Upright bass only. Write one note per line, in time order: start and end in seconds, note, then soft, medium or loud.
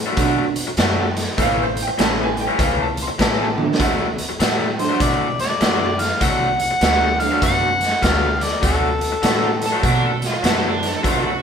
0.17 0.66 B2 medium
0.77 1.26 F#2 medium
1.38 1.87 A1 loud
1.98 2.47 A1 medium
2.59 3.08 C#2 medium
3.19 3.68 A1 medium
3.80 4.28 D2 medium
4.40 4.89 A2 medium
5.00 5.49 B2 medium
5.60 6.09 F#2 medium
6.21 6.70 C2 medium
6.81 7.30 D2 medium
7.42 7.91 F#2 medium
8.03 8.51 D2 medium
8.63 9.11 D2 medium
9.23 9.72 A2 medium
9.83 10.32 B2 medium
10.43 10.92 F#2 medium
11.04 11.42 C2 medium